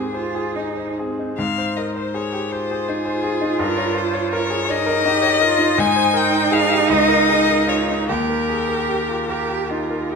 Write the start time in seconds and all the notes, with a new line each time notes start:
Already playing: G#2 G4 G#4 A#4 C5
0.13 F4 C5
0.35 G#4
0.56 D#4
0.77 C5
0.98 C4 G#4
1.19 D#4
1.37 G#2 F5
1.58 C5
1.76 A#4 D#5
1.95 C5
2.14 G#4 C#5
2.33 G4
2.50 F4 C5
2.71 G#4
2.88 D#4 G#4
3.05 C5
3.24 G#4
3.41 D#4
3.59 G2 A#4
3.77 C#5
3.95 C5
4.13 C#5
4.33 A#4 C#5
4.50 G#4
4.69 D#4 C#5 D#5
4.86 A#4
5.05 D#4 G4
5.22 C#5
5.41 F4 A#4
5.58 D#4
5.78 G#2 D#4 G#5
5.96 C5
6.14 A#4 G5
6.33 C5
6.51 G#4 F5
6.72 G4
6.89 C#2 D#5
7.09 A#4
7.29 G#4
7.49 A#4
7.67 F4 C#5
7.89 D#4
8.09 D#2 G4 A#4
8.29 A#4
8.49 G#4
8.69 A#4
8.89 G4
9.09 F4
9.29 G4 A#4
9.50 G4
9.70 D#4 F4
9.90 A#4
10.10 D#4 G4